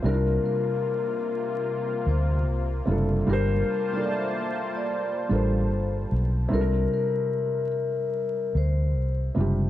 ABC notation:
X:1
M:4/4
L:1/16
Q:"Swing 16ths" 1/4=74
K:Cdor
V:1 name="Vibraphone"
B2 B8 c3 z3 | B3 d =e3 d3 c3 z3 | B2 B8 c3 z3 |]
V:2 name="Felt piano"
[C,G,D=EFB]4- [C,G,DEFB] z8 z [C,G,DFA] z | [G,DFGBc]2 z [G,DFABcd]4- [G,DFABcd] z2 [G,DFABc]4 z2 | [C,G,DFAB]4- [C,G,DFAB] z8 z [C,G,DFG] z |]
V:3 name="Analog synth pad"
[C,B,F]16 | [G,B,Fca]16 | z16 |]
V:4 name="Fingered electric bass" clef=bass
C,,2 z8 D,,2 C,,2 ^F,,,2 | G,,,2 z8 A,,,2 G,,,2 =B,,,2 | C,,2 z8 D,,2 C,,2 ^F,,,2 |]